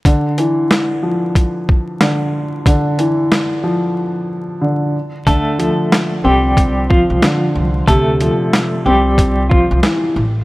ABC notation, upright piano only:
X:1
M:4/4
L:1/8
Q:"Swing 16ths" 1/4=92
K:Dm
V:1 name="Upright piano" clef=bass
D, E,2 F,3 D,2 | D, E,2 F,3 D, z | D, F,2 C3 D,2 | C, F,2 C3 E, z |]